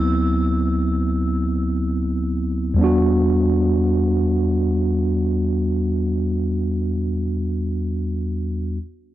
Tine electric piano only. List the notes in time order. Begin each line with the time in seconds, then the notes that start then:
Already playing: D2 F#3 B3 C4 E4
2.74 E2 G3
2.79 B3 D4
2.84 F#4